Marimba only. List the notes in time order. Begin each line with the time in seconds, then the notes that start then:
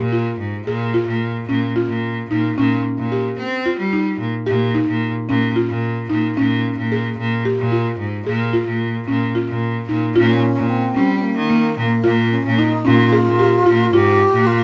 0.12 F4
0.67 G#4
0.94 F4
1.49 C#4
1.76 F4
2.31 D#4
2.58 C#4
3.12 G4
3.66 F4
3.93 D#4
4.46 G4
4.75 D#4
5.29 C#4
5.56 F4
6.10 D#4
6.37 C#4
6.92 G#4
7.45 G4
7.72 F4
8.27 G#4
8.53 F4
9.08 C#4
9.35 F4
9.89 D#4
10.16 F4
10.96 C#4
11.50 A#3
12.04 F4
12.59 D#4
12.85 C#4
13.12 G#4
13.39 G4
13.66 F4
13.93 F4